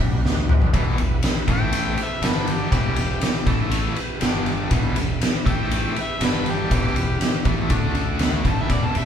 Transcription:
0.00 B1 D4 F#4 G4 B4
0.23 D2 D4 F#4 G4 B4, snare
0.49 E2 D4 F#4 G4 B4, mid tom
0.62 floor tom
0.73 E1 E2 B2 E3 B3 E4 G4 B4, kick, ride
0.98 E1 E2 B2 B3 E4 G4 B4, ride
1.23 B3 E4 G4 B4, snare, ride
1.47 A1 A2 E3 A3 E4 A4 E5, kick, ride
1.53 G5
1.73 ride
1.96 B3 E4 G4 B4, muted fingered electric bass stroke, muted overdriven electric guitar stroke, ride
2.02 A4 C5 E5
2.22 G1 G2 D3 G3 D4 G4 D5, snare, ride
2.28 B4
2.46 G3 D4 G4 D5, ride
2.52 G4
2.70 E1 E2 B2 E3 B3 E4 G4 B4, kick, ride
2.96 E1 E2 B2 B3 E4 G4 B4, ride
3.19 B3 E4 G4 D5, snare, ride
3.36 snare
3.46 A1 A2 E3 A3 E4 A4 E5, kick, snare, ride
3.71 ride
3.95 B3 E4 G4 B4, muted overdriven electric guitar stroke, muted fingered electric bass stroke, ride
4.20 G1 G2 D3 G3 D4 G4 D5, snare, ride
4.44 G3 D4 G4 D5, ride
4.69 E1 E2 B2 E3 B3 E4 G4 B4, kick, ride
4.94 E1 E2 B2 B3 E4 G4 A4, ride
5.20 B3 E4 G4 D5, snare, ride
5.45 A1 A2 E3 A3 E4 A4 E5, kick, ride
5.50 G5
5.71 ride
5.96 B3 E4 G4 B4, muted fingered electric bass stroke, muted overdriven electric guitar stroke, ride
6.02 E5
6.21 G1 G2 D3 G3 D4 G4 D5, snare, ride
6.26 B4
6.45 G3 D4 G4 B4, ride
6.50 G4
6.70 E1 E2 B2 E3 B3 E4 G4 B4, kick, ride
6.95 E1 E2 B2 B3 E4 G4 B4, ride
7.19 B3 E4 G4 B4, snare, ride
7.45 A1 A2 E3 A3 B3 E4 G4 A4, kick, ride
7.70 D2 D3 A3 D4 A4 D5, kick, ride
7.95 A3 D4 A4 D5, ride
8.19 A3 D4 A4 B4, snare, ride
8.44 G1 G2 D3 G3 B3 G4 B4, kick, ride
8.49 A5
8.62 E5
8.69 E1 E2 B2 E3 D5, kick, ride
8.85 A5
8.93 E1 E2 B2 B3 E4 G4 D5, ride
8.98 E5

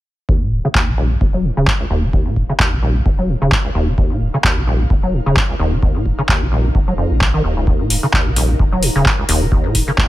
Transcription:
0.29 D#2 D#4, kick
0.42 A#2
0.52 D#1 G#2
0.65 C#3
0.69 A#4
0.75 D#2, kick, clap
0.85 A#1 D#3 F5
0.98 D#1
1.11 D#3
1.21 D#1 D#2, kick
1.34 F#3
1.44 G#2
1.57 D#1 C#3
1.67 D#2, kick, clap
1.80 C#2
1.90 D#1 D#2
2.03 D#3
2.13 D#2, kick
2.26 A#2
2.36 D#1 G#2, kick
2.49 C#3
2.60 D#2, kick, clap
2.72 A#1 D#3
2.83 D#1
2.96 D#3
3.06 D#1 D#2, kick
3.19 F#3
3.29 G#2
3.42 D#1 C#3
3.52 D#2, kick, clap
3.65 C#2
3.75 D#1 D#2
3.88 D#3
3.98 D#2, kick
4.11 A#2
4.21 D#1 G#2
4.34 C#3
4.44 D#2, kick, clap
4.57 A#1 D#3
4.67 D#1
4.80 D#3
4.90 D#1 D#2, kick
5.03 F#3
5.13 G#2
5.26 D#1 C#3
5.36 D#2, kick, clap
5.49 C#2
5.59 D#1 D#2
5.72 D#3
5.83 D#2, kick
5.96 A#2
6.06 D#1 G#2, kick
6.19 C#3
6.29 D#2, kick, clap
6.42 A#1 D#3
6.52 D#1
6.65 D#3
6.75 D#1 D#2, kick
6.88 F#3
6.98 F2
7.11 D#1 A#1
7.21 D#2, kick, clap
7.34 D#3
7.44 D#1 D#2
7.57 C#2
7.67 D#2, kick
7.80 A#2
7.90 D#1 G#2, open hi-hat
8.03 C#3
8.13 D#2, kick, clap
8.23 A#1 D#3 A#5
8.36 D#1, open hi-hat
8.49 D#3
8.59 D#1 D#2, kick
8.72 F#3
8.83 G#2, open hi-hat
8.95 D#1 C#3
9.06 D#2, kick, clap
9.19 C#2
9.29 D#1 D#2, open hi-hat
9.42 D#3
9.52 D#2, kick
9.65 A#2
9.75 D#1 G#2, kick, open hi-hat
9.88 C#3
9.98 D#2, kick, clap

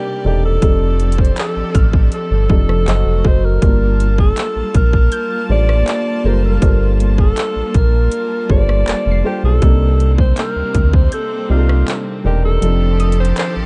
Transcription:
Already playing: C3 G3 A#3 C4 D4 D#4 G4 A#4 D5
0.24 E1 C3 C4 D4 D#4 G4 A4
0.46 A4
0.61 F1 F3 C4 D4 D#4 G4 A4, kick, closed hi-hat
1.00 closed hi-hat
1.12 closed hi-hat
1.18 C5, kick
1.25 closed hi-hat
1.37 A4, clap, closed hi-hat
1.56 A1
1.75 A1 F6, kick, closed hi-hat
1.93 kick
2.12 A4, closed hi-hat
2.31 G1
2.49 F1 F3 C4 D4 D#4 G4 A4, kick
2.68 F1, cross-stick
2.86 F#1 F#3 A3 F#4 A4 C5 D#5, clap, closed hi-hat
3.06 F1
3.24 F#1 F#3 F#4 A4 C5 D#5, kick
3.45 A#4
3.61 G1 G3 A#3 D4 F4 G4 A5, kick, closed hi-hat
4.00 closed hi-hat
4.18 A4, kick
4.37 clap, closed hi-hat
4.56 A#1
4.74 A#1 A#4, kick, closed hi-hat
4.93 kick
5.12 G6, closed hi-hat
5.49 A1 G3 D4 F4 A4 C5 D5
5.69 cross-stick
5.88 clap, closed hi-hat
6.24 F#1 G3 D4 F4 A4 A#4 C5
6.45 A#4
6.61 G1 G3 D4 F4 A4 C5, kick, closed hi-hat
7.00 closed hi-hat
7.18 A4, kick
7.37 clap, closed hi-hat
7.56 A#1
7.74 A#1 A#4, kick, closed hi-hat
8.12 closed hi-hat
8.49 G1 G3 D4 F4 A4 B4 D5, kick
8.57 C5
8.69 cross-stick
8.87 F1 A6, clap, closed hi-hat
9.06 F1
9.11 C7
9.24 G3 D4 F4 G4 A4 C5
9.43 B1 A4
9.61 C2 C3 A#3 C4 D4 D#4, kick, closed hi-hat
10.00 closed hi-hat
10.18 C5, kick
10.37 A#4 G6, clap, closed hi-hat
10.56 D2
10.75 D2, kick, closed hi-hat
10.93 C5, kick
11.12 A4 G6, closed hi-hat
11.49 C2 C3 C4 D4 D#4 F4 G4
11.57 A4
11.69 cross-stick
11.88 clap, closed hi-hat
12.24 E1 C3 C4 D4 D#4 G4 A#4
12.45 A4
12.61 F1 D#3 F3 C4 D4 D#4 G4 A4, closed hi-hat
13.00 D#6, closed hi-hat
13.12 closed hi-hat
13.20 C5
13.25 closed hi-hat
13.37 C5, clap, closed hi-hat
13.56 A1

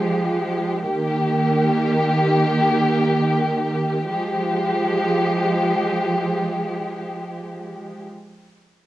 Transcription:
Already playing: F3 G#3 F4 G4
0.81 D#3 A#3 G4
4.07 F3 G#3 G4

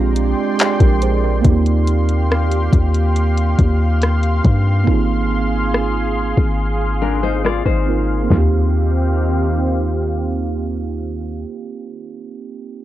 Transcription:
Already playing: A#1 G#3 C4 D4 F4 G4 D5 G5 C6
0.16 closed hi-hat
0.59 G4, clap, closed hi-hat
0.80 A#1 G4 A#4, kick, closed hi-hat
1.02 G#4 C5, closed hi-hat
1.23 A#4 D5
1.41 D#2 A#3 C4 D#4 G4 F5 C6, kick, closed hi-hat
1.47 F4 G4
1.66 closed hi-hat
1.87 closed hi-hat
2.09 closed hi-hat
2.32 cross-stick
2.51 closed hi-hat
2.73 D#2, kick, closed hi-hat
2.94 closed hi-hat
3.16 closed hi-hat
3.37 closed hi-hat
3.59 D#2, kick, closed hi-hat
4.02 cross-stick, closed hi-hat
4.23 closed hi-hat
4.44 G2, kick, closed hi-hat
4.84 G#1 A#3 C4 D#4 G#4, kick
4.89 F4 G#4
5.74 cross-stick
6.37 G#1, kick
7.02 D4 A#4
7.23 D#4 C5
7.45 F4 D5, cross-stick
7.66 G#1 D#4 C5, kick
7.86 A#3 C4 D#4 F4 A#4
8.23 A#3 C4
8.30 D#2 D#3 C4 D#4 G4 F5, snare, floor tom
8.34 F4 G4

